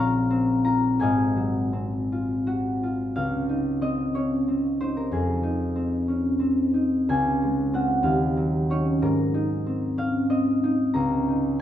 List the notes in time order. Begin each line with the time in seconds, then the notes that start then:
Already playing: A#1 A#2 F3 C4 C#4 F4 C#5 F5 A#5 C6 C#6
0.30 C4
0.64 F4 A#5
0.99 G#1 G#2 D#5 F5 G#5
1.36 F#3
1.73 C4
2.12 F4
2.47 F#4
2.83 F4
3.16 C#2 F5
3.49 D#4
3.81 C4 D#5
4.14 C#4 C#5
4.48 C4
4.80 D#4 C5
4.97 A#4
5.11 F2 G#4
5.43 D#4
5.76 C4
6.08 C#4
6.39 C4
6.74 D#4
7.09 C#2 G#5
7.42 G#3
7.73 C4 F4 F#5
8.03 D#2 F5
8.37 F#3
8.70 C#4 D#4 C#5
9.02 G#2 A#4
9.34 D#4
9.66 C4
9.97 C#4 F5
10.29 C4 D#5
10.63 D#4
10.94 C#2 A#5
11.28 D#4